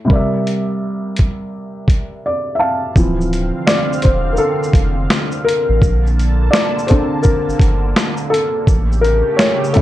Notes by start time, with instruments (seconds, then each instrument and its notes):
0.05 felt piano C3 G3
0.10 felt piano A#4 D5, kick
0.15 felt piano E5
0.47 closed hi-hat
1.16 kick, closed hi-hat
1.88 kick, closed hi-hat
2.26 felt piano D5
2.55 felt piano E5
2.59 felt piano F5 A5
2.95 sub bass D1, analog synth pad D3 C4 F5, felt piano E3 F3 C4, kick, shaker
3.21 shaker
3.33 closed hi-hat, shaker
3.67 felt piano D5, snare, shaker
3.93 shaker
4.02 sub bass E1, felt piano C5, kick, closed hi-hat, shaker
4.33 felt piano A#4, shaker
4.38 felt piano A4
4.63 shaker
4.73 sub bass F1, kick, closed hi-hat, shaker
5.10 snare, shaker
5.32 shaker
5.44 felt piano A#4
5.49 closed hi-hat, shaker
5.69 sub bass A1
5.81 sub bass A#1, analog synth pad D3 A#3 A5, kick, shaker
6.07 shaker
6.19 closed hi-hat, shaker
6.51 felt piano D5, snare, shaker
6.79 shaker
6.87 felt piano C4 D4 A4 C5, kick, closed hi-hat, shaker
7.23 felt piano A#4, kick, shaker
7.48 sub bass G1, shaker
7.59 sub bass G1, kick, closed hi-hat, shaker
7.96 snare, shaker
8.17 shaker
8.30 felt piano A4
8.34 closed hi-hat, shaker
8.66 sub bass A1, analog synth pad C#3 A3 G4, kick, shaker
8.92 shaker
9.01 felt piano A#4, closed hi-hat, shaker
9.37 felt piano C#5, snare, shaker
9.64 shaker
9.73 sub bass G1, felt piano G3 C#4 E4 A4, kick, closed hi-hat, shaker